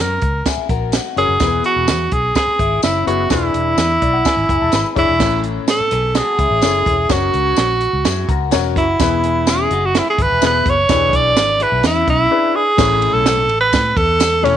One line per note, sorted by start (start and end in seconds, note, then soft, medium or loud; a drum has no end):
0.00 0.17 F#2 medium
0.00 0.47 A#4 medium
0.00 0.10 C#5 medium
0.22 0.41 C#2 medium
0.22 kick medium
0.22 closed hi-hat medium
0.46 0.69 E4 medium
0.46 0.68 G#4 medium
0.46 kick medium
0.46 snare medium
0.46 closed hi-hat medium
0.46 tambourine medium
0.57 muted fingered electric bass stroke soft
0.69 0.98 A#1 medium
0.69 0.92 F#4 medium
0.69 0.92 A#4 medium
0.69 kick medium
0.69 closed hi-hat medium
0.92 1.39 D#4 medium
0.92 1.39 F#4 medium
0.92 snare loud
0.92 closed hi-hat medium
0.92 tambourine medium
1.16 1.26 F#1 medium
1.16 1.31 C#4 medium
1.16 1.32 F#4 medium
1.16 1.62 G#4 loud
1.16 1.32 A#4 medium
1.16 1.32 C#5 medium
1.16 closed hi-hat medium
1.28 1.38 F#1 medium
1.40 1.60 E1 medium
1.40 2.08 E3 medium
1.40 1.99 B3 medium
1.40 1.99 E4 medium
1.40 2.00 G#4 medium
1.40 1.47 A#4 medium
1.40 kick medium
1.40 snare loud
1.40 closed hi-hat medium
1.40 tambourine medium
1.47 2.03 B4 medium
1.64 2.14 F#4 loud
1.64 closed hi-hat medium
1.76 1.89 E1 medium
1.88 2.07 E2 medium
1.88 snare loud
1.88 closed hi-hat medium
1.88 tambourine medium
2.12 2.31 B1 medium
2.12 2.36 G#4 medium
2.12 kick medium
2.12 closed hi-hat medium
2.35 2.80 G#4 loud
2.35 2.58 G#4 medium
2.35 2.58 B4 medium
2.35 kick medium
2.35 snare loud
2.35 closed hi-hat medium
2.35 tambourine medium
2.47 muted fingered electric bass stroke soft
2.59 2.78 G#1 medium
2.59 2.82 E4 medium
2.59 2.82 G#4 medium
2.59 kick medium
2.59 closed hi-hat medium
2.83 3.02 F#1 medium
2.83 3.29 C#4 medium
2.83 3.28 E4 medium
2.83 3.06 E4 medium
2.83 snare loud
2.83 closed hi-hat medium
2.83 tambourine medium
3.06 3.26 F#1 medium
3.06 3.21 B3 medium
3.06 3.21 E4 medium
3.06 3.29 F#4 medium
3.06 3.22 G#4 medium
3.06 3.22 B4 medium
3.06 closed hi-hat medium
3.30 3.49 E1 medium
3.30 3.98 E3 medium
3.30 3.89 D4 medium
3.30 3.89 E4 medium
3.30 4.93 E4 medium
3.30 3.90 G#4 medium
3.30 3.90 B4 medium
3.30 kick loud
3.30 snare loud
3.30 closed hi-hat medium
3.30 tambourine medium
3.54 3.73 E1 medium
3.54 closed hi-hat medium
3.77 3.97 E2 medium
3.77 snare loud
3.77 closed hi-hat medium
3.77 tambourine medium
4.02 4.21 B1 medium
4.02 4.13 D5 medium
4.02 kick medium
4.02 closed hi-hat medium
4.14 4.25 F#5 medium
4.25 4.59 G#5 medium
4.25 kick medium
4.25 snare loud
4.25 closed hi-hat medium
4.25 tambourine medium
4.37 4.46 G#1 medium
4.49 4.59 F#1 medium
4.49 4.72 E4 medium
4.49 4.72 G#4 medium
4.49 kick medium
4.49 closed hi-hat medium
4.62 4.71 E1 medium
4.62 4.72 A5 medium
4.72 4.82 G#1 loud
4.72 4.96 G#4 medium
4.72 4.96 B4 medium
4.72 4.95 B5 medium
4.72 snare loud
4.72 closed hi-hat medium
4.72 tambourine medium
4.95 5.06 F#1 medium
4.95 5.11 D4 medium
4.95 5.11 E4 medium
4.95 5.42 E4 soft
4.95 5.42 E4 loud
4.95 5.11 G#4 medium
4.95 5.42 G#4 medium
4.95 5.11 C#5 medium
4.95 5.19 C#6 medium
4.95 kick medium
4.95 closed hi-hat medium
5.09 5.18 E1 medium
5.19 5.58 A1 medium
5.19 5.87 A2 medium
5.19 5.79 C#4 medium
5.19 5.79 E4 medium
5.19 5.79 A4 medium
5.19 5.79 C#5 medium
5.19 kick loud
5.19 snare loud
5.19 crash medium
5.19 tambourine medium
5.44 closed hi-hat medium
5.68 6.19 A4 medium
5.68 snare loud
5.68 closed hi-hat medium
5.68 tambourine medium
5.80 muted fingered electric bass stroke soft
5.91 6.20 B1 medium
5.91 6.15 G#4 medium
5.91 6.14 B4 medium
5.91 closed hi-hat medium
6.15 6.38 F#4 medium
6.15 7.14 G#4 loud
6.15 6.38 A4 medium
6.15 snare loud
6.15 closed hi-hat medium
6.15 tambourine medium
6.39 6.48 C#2 medium
6.39 7.07 C#4 medium
6.39 7.07 E4 medium
6.39 kick medium
6.39 closed hi-hat medium
6.51 6.60 A1 medium
6.62 6.92 C#4 medium
6.62 6.92 E4 medium
6.62 6.92 A4 medium
6.62 6.92 C#5 medium
6.62 snare loud
6.62 closed hi-hat medium
6.62 tambourine medium
6.86 7.05 E1 medium
6.86 kick loud
6.86 closed hi-hat medium
7.09 7.29 F#1 loud
7.09 7.68 C#4 medium
7.09 7.68 F#4 medium
7.09 8.53 F#4 medium
7.09 7.69 A#4 medium
7.09 7.69 C#5 medium
7.09 kick loud
7.09 snare loud
7.09 closed hi-hat medium
7.09 tambourine medium
7.34 7.53 C#2 medium
7.34 closed hi-hat medium
7.56 7.86 A#1 medium
7.56 snare loud
7.56 closed hi-hat medium
7.56 tambourine medium
7.81 closed hi-hat medium
7.93 8.03 C#2 medium
8.05 8.24 F#2 loud
8.05 8.28 E4 medium
8.05 8.28 G#4 medium
8.05 snare loud
8.05 closed hi-hat medium
8.05 tambourine medium
8.29 8.54 C#2 medium
8.29 8.52 F#4 medium
8.29 8.51 A#4 medium
8.29 kick medium
8.29 closed hi-hat medium
8.51 8.76 E1 loud
8.51 8.81 C#4 medium
8.51 8.98 D#4 medium
8.51 8.81 F#4 medium
8.51 8.98 F#4 medium
8.51 8.82 A#4 medium
8.51 8.82 C#5 loud
8.51 snare loud
8.51 closed hi-hat medium
8.51 tambourine medium
8.76 8.95 F#1 medium
8.76 9.51 E4 medium
8.76 kick loud
8.76 closed hi-hat medium
8.99 9.67 E1 loud
8.99 9.67 E3 medium
8.99 9.58 B3 medium
8.99 9.58 E4 medium
8.99 9.59 G#4 medium
8.99 9.59 B4 medium
8.99 kick loud
8.99 snare loud
8.99 closed hi-hat medium
8.99 tambourine medium
9.24 closed hi-hat medium
9.47 9.70 C#4 medium
9.47 9.70 E4 medium
9.47 9.88 G#4 medium
9.47 snare loud
9.47 closed hi-hat medium
9.47 tambourine medium
9.71 9.99 F#1 medium
9.71 9.94 D#4 medium
9.71 9.94 F#4 medium
9.71 closed hi-hat medium
9.86 10.00 F#4 medium
9.95 10.62 E4 medium
9.95 10.08 E4 medium
9.95 10.62 G#4 medium
9.95 snare loud
9.95 closed hi-hat medium
9.95 tambourine medium
10.10 10.24 G#4 medium
10.19 10.28 G#1 medium
10.19 10.44 B4 loud
10.19 kick loud
10.19 closed hi-hat medium
10.30 10.39 E1 medium
10.41 10.61 E1 loud
10.41 10.71 B3 medium
10.41 10.71 E4 medium
10.41 10.71 G#4 medium
10.41 10.72 B4 medium
10.41 snare loud
10.41 closed hi-hat medium
10.41 tambourine medium
10.46 10.71 B4 loud
10.66 10.85 F#1 medium
10.66 11.17 C#5 loud
10.66 kick loud
10.66 closed hi-hat medium
10.89 11.08 E1 loud
10.89 11.57 E3 medium
10.89 11.48 D4 medium
10.89 11.48 E4 medium
10.89 10.95 G4 medium
10.89 11.49 B4 medium
10.89 kick loud
10.89 snare loud
10.89 closed hi-hat medium
10.89 tambourine medium
10.96 11.51 G#4 medium
11.13 11.36 B1 medium
11.13 11.64 D5 loud
11.13 kick medium
11.13 closed hi-hat medium
11.36 11.64 G#1 medium
11.36 11.60 G#4 medium
11.36 11.59 B4 medium
11.36 snare loud
11.36 closed hi-hat medium
11.36 tambourine medium
11.60 11.83 E4 medium
11.60 11.83 G#4 medium
11.60 11.85 B4 medium
11.60 closed hi-hat medium
11.72 11.81 B1 medium
11.83 12.02 E2 medium
11.83 12.52 C#4 medium
11.83 12.52 E4 medium
11.83 12.07 E4 medium
11.83 snare loud
11.83 closed hi-hat medium
11.83 tambourine medium
12.07 12.26 B1 medium
12.07 12.57 E4 medium
12.07 kick loud
12.07 closed hi-hat medium
12.31 12.60 D4 medium
12.31 12.60 E4 medium
12.31 12.61 G#4 medium
12.31 12.61 B4 medium
12.56 13.15 G#4 loud
12.78 13.07 A1 loud
12.78 13.45 A2 medium
12.78 13.37 A3 medium
12.78 13.37 C#4 medium
12.78 13.37 E4 medium
12.78 13.37 C#5 medium
12.78 kick loud
12.78 snare loud
12.78 crash loud
12.78 tambourine medium
13.02 ride medium
13.13 13.49 B1 medium
13.13 13.60 A4 loud
13.26 snare loud
13.26 ride medium
13.26 tambourine medium
13.49 13.74 A1 medium
13.49 ride medium
13.61 13.99 B4 loud
13.73 13.92 A2 loud
13.73 kick medium
13.73 snare loud
13.73 ride medium
13.73 tambourine medium
13.97 14.47 E2 medium
13.97 14.46 A4 loud
13.97 kick loud
13.97 ride medium
14.20 snare loud
14.20 ride medium
14.20 tambourine medium
14.43 14.57 E1 medium
14.43 14.57 A3 medium
14.43 14.57 C#4 medium
14.43 14.57 C#4 loud
14.43 14.57 E4 medium
14.43 14.57 A4 medium
14.43 14.57 C#5 medium
14.43 snare soft
14.43 ride medium